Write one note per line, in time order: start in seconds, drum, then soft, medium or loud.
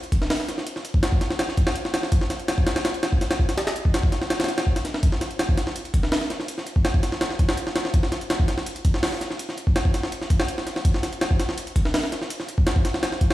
0.03 closed hi-hat soft
0.12 kick medium
0.12 closed hi-hat medium
0.22 snare soft
0.30 snare loud
0.30 open hi-hat medium
0.40 snare soft
0.49 snare soft
0.49 closed hi-hat medium
0.58 snare soft
0.67 closed hi-hat medium
0.76 snare soft
0.85 closed hi-hat medium
0.94 kick medium
1.03 snare loud
1.03 closed hi-hat medium
1.12 kick medium
1.21 snare soft
1.21 closed hi-hat medium
1.30 snare medium
1.39 snare loud
1.39 closed hi-hat medium
1.49 snare soft
1.57 kick medium
1.57 closed hi-hat medium
1.67 snare loud
1.76 closed hi-hat medium
1.85 snare soft
1.94 snare loud
1.94 closed hi-hat medium
2.03 snare medium
2.12 kick loud
2.12 closed hi-hat medium
2.21 snare soft
2.30 snare soft
2.30 closed hi-hat medium
2.40 closed hi-hat soft
2.48 snare loud
2.48 closed hi-hat medium
2.58 kick medium
2.67 snare loud
2.67 closed hi-hat medium
2.76 snare loud
2.76 closed hi-hat medium
2.85 snare loud
2.85 closed hi-hat medium
2.94 closed hi-hat soft
3.03 snare loud
3.03 closed hi-hat medium
3.12 kick medium
3.21 snare soft
3.21 closed hi-hat medium
3.31 snare loud
3.31 closed hi-hat medium
3.39 kick medium
3.49 snare soft
3.49 closed hi-hat medium
3.58 snare loud
3.58 closed hi-hat medium
3.67 snare medium
3.67 closed hi-hat medium
3.76 closed hi-hat medium
3.85 kick medium
3.94 snare loud
3.94 closed hi-hat medium
4.03 kick medium
4.12 snare soft
4.12 closed hi-hat medium
4.22 snare soft
4.30 snare loud
4.30 closed hi-hat medium
4.40 snare medium
4.40 closed hi-hat medium
4.44 snare medium
4.44 closed hi-hat medium
4.48 snare soft
4.48 closed hi-hat medium
4.58 snare loud
4.58 closed hi-hat medium
4.67 kick medium
4.76 snare soft
4.76 closed hi-hat medium
4.85 snare soft
4.85 closed hi-hat medium
4.94 snare medium
5.03 kick loud
5.03 closed hi-hat medium
5.12 snare soft
5.21 snare soft
5.21 closed hi-hat medium
5.31 closed hi-hat soft
5.39 snare loud
5.39 closed hi-hat medium
5.49 kick medium
5.57 snare medium
5.57 closed hi-hat medium
5.67 snare medium
5.76 closed hi-hat medium
5.85 closed hi-hat soft
5.94 kick medium
5.94 closed hi-hat medium
6.03 snare soft
6.12 snare loud
6.12 open hi-hat medium
6.21 snare soft
6.30 snare soft
6.30 closed hi-hat medium
6.40 snare soft
6.48 closed hi-hat medium
6.58 snare soft
6.67 closed hi-hat medium
6.76 kick medium
6.85 snare loud
6.85 closed hi-hat medium
6.94 kick medium
7.03 snare soft
7.03 closed hi-hat medium
7.12 snare medium
7.21 snare loud
7.21 closed hi-hat medium
7.31 snare soft
7.39 kick medium
7.39 closed hi-hat medium
7.49 snare loud
7.57 closed hi-hat medium
7.67 snare medium
7.76 snare medium
7.76 closed hi-hat medium
7.85 snare medium
7.94 kick loud
7.94 closed hi-hat medium
8.03 snare soft
8.12 snare medium
8.12 closed hi-hat medium
8.21 closed hi-hat soft
8.30 snare loud
8.30 closed hi-hat medium
8.40 kick medium
8.48 snare medium
8.48 closed hi-hat medium
8.58 snare medium
8.66 closed hi-hat medium
8.76 closed hi-hat soft
8.85 kick medium
8.85 closed hi-hat medium
8.94 snare medium
9.03 snare loud
9.03 open hi-hat medium
9.12 snare soft
9.21 snare soft
9.21 closed hi-hat medium
9.31 snare soft
9.39 closed hi-hat medium
9.49 snare soft
9.58 closed hi-hat medium
9.67 kick medium
9.76 snare loud
9.76 closed hi-hat medium
9.85 kick medium
9.94 snare soft
9.94 closed hi-hat medium
10.03 snare medium
10.12 closed hi-hat medium
10.22 snare soft
10.30 kick medium
10.30 closed hi-hat medium
10.40 snare loud
10.48 closed hi-hat medium
10.58 snare soft
10.67 snare soft
10.67 closed hi-hat medium
10.76 snare medium
10.85 kick loud
10.85 closed hi-hat medium
10.94 snare soft
11.03 snare soft
11.03 closed hi-hat medium
11.13 closed hi-hat soft
11.21 snare loud
11.21 closed hi-hat medium
11.31 kick medium
11.40 snare medium
11.40 closed hi-hat medium
11.49 snare medium
11.58 closed hi-hat medium
11.67 closed hi-hat soft
11.76 kick medium
11.76 closed hi-hat medium
11.85 snare medium
11.94 snare loud
11.94 open hi-hat medium
12.03 snare soft
12.12 snare soft
12.12 closed hi-hat medium
12.22 snare soft
12.30 closed hi-hat medium
12.40 snare soft
12.48 closed hi-hat medium
12.58 kick loud
12.67 snare loud
12.67 closed hi-hat medium
12.76 kick medium
12.85 snare soft
12.85 closed hi-hat medium
12.94 snare medium
13.03 snare loud
13.03 closed hi-hat medium
13.12 snare soft
13.21 kick medium
13.21 closed hi-hat medium
13.31 snare loud